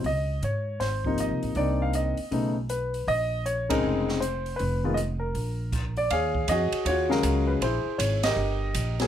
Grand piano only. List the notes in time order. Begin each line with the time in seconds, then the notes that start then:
0.06 D#5
0.44 C#5
0.80 C5
1.05 C3 F3 A#3 D#4
1.20 D#5
1.56 A#3 C4 D4 D#4 D5
1.82 F5
1.95 D#5
2.31 C#3 A3 B3 D#4
2.70 B4
3.08 D#5
3.46 C#5
3.69 C#3 G#3 C4 D#4 A#4
4.20 C5
4.56 B4
4.84 D#3 G#3 B3 F4
4.94 D#5
5.20 A#4
5.97 D5
6.11 G#4 C#5 F5
6.49 F#4 G#4 D#5
6.87 F4 F#4 C#5
7.09 C#3 F#3 G#3 F#4 A#4 F5
7.13 C#4
7.47 B4
7.62 E4 G#4 C5
7.98 C#5
8.24 G4 A#4 D#5
9.00 F#3 A#3 B3 G#4